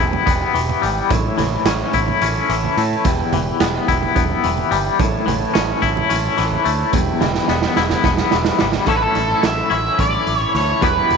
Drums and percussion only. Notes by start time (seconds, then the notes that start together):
0.13 high conga, low conga
0.27 kick, closed hi-hat
0.55 closed hi-hat, low conga
0.69 low conga
0.83 closed hi-hat
1.10 kick, closed hi-hat, high conga
1.38 snare, closed hi-hat, low conga
1.66 snare, closed hi-hat
1.93 kick, closed hi-hat
2.08 high conga, low conga
2.21 closed hi-hat
2.50 closed hi-hat, low conga
2.63 low conga
2.78 closed hi-hat
2.91 low conga
3.04 kick, closed hi-hat, high conga
3.33 closed hi-hat, low conga
3.60 snare, closed hi-hat, low conga
3.88 kick, closed hi-hat
4.03 high conga, low conga
4.16 kick, closed hi-hat
4.44 closed hi-hat
4.58 low conga
4.72 closed hi-hat
4.86 low conga
5.00 kick, closed hi-hat, high conga
5.28 closed hi-hat, low conga
5.55 snare, closed hi-hat, low conga
5.83 kick, closed hi-hat
5.97 high conga, low conga
6.10 closed hi-hat
6.38 snare, closed hi-hat, low conga
6.52 low conga
6.66 closed hi-hat
6.93 kick, closed hi-hat, high conga, low conga
7.21 snare, low conga
7.35 snare
7.48 snare
7.62 snare
7.76 snare
7.90 snare, high conga, low conga
8.04 kick, snare
8.17 snare, high conga
8.31 snare, high conga
8.45 snare, high conga
8.59 snare, low conga
8.72 snare, low conga
8.86 kick, closed hi-hat
9.15 snare, closed hi-hat
9.43 snare, closed hi-hat
9.71 closed hi-hat
9.99 kick, closed hi-hat
10.27 closed hi-hat
10.55 snare, closed hi-hat
10.82 kick, closed hi-hat
11.10 closed hi-hat